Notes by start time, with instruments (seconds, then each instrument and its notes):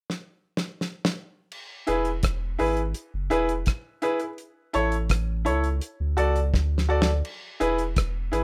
0.10 snare
0.57 snare
0.81 snare
1.05 snare
1.52 crash
1.87 sub bass E1, upright piano E4 G#4 B4, closed hi-hat
2.05 closed hi-hat
2.23 sub bass E1, kick, cross-stick, closed hi-hat
2.59 sub bass G#1, upright piano E4 G#4 B4, open hi-hat
2.77 closed hi-hat
2.94 closed hi-hat
3.14 sub bass F#1
3.30 sub bass E1, upright piano E4 G#4 B4, closed hi-hat
3.49 closed hi-hat
3.66 kick, cross-stick, closed hi-hat
4.02 upright piano E4 G#4 B4, closed hi-hat
4.20 upright piano G#4 B4, closed hi-hat
4.38 closed hi-hat
4.73 sub bass A1, upright piano E4 A4 C#5, closed hi-hat
4.92 closed hi-hat
5.09 sub bass A1, kick, cross-stick, closed hi-hat
5.45 sub bass C#2, upright piano E4 A4 C#5, closed hi-hat
5.64 closed hi-hat
5.81 closed hi-hat
6.00 sub bass D2
6.17 sub bass C#2, upright piano F#4 A4 D5, closed hi-hat
6.36 closed hi-hat
6.54 sub bass D2, kick, snare
6.78 snare
6.89 upright piano F#4 A4 D5
7.02 snare
7.25 crash
7.60 sub bass E1, upright piano E4 G#4 B4, closed hi-hat
7.78 closed hi-hat
7.96 sub bass E1, kick, cross-stick, closed hi-hat
8.32 sub bass G#1, upright piano E4 G#4 B4, closed hi-hat